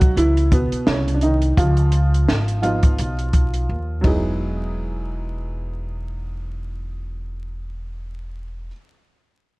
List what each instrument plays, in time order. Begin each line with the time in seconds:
Already playing: upright bass B1, upright piano F#3 G#3 F#4
0.01 kick, closed hi-hat
0.17 upright bass C#2, upright piano E3 E4, closed hi-hat
0.37 closed hi-hat
0.52 upright piano B2 B3, kick, closed hi-hat
0.72 muted upright bass stroke, closed hi-hat
0.87 upright bass C2, upright piano C#3 C#4, snare
1.08 closed hi-hat
1.14 upright piano D4
1.21 upright piano D#3 D#4, closed hi-hat
1.42 closed hi-hat
1.57 upright bass C#2, upright piano F3 F4, kick, closed hi-hat
1.77 closed hi-hat
1.92 closed hi-hat
2.14 closed hi-hat
2.28 upright bass G#1, snare
2.48 closed hi-hat
2.62 upright piano F3 B3 D#4 F4, closed hi-hat
2.83 kick, closed hi-hat
2.98 upright bass B1, closed hi-hat
3.19 closed hi-hat
3.33 kick, closed hi-hat
3.54 closed hi-hat
3.69 upright bass D#2
4.01 upright bass E1, upright piano F#3 B3 D#4, kick, ride
4.05 upright piano E4 G#4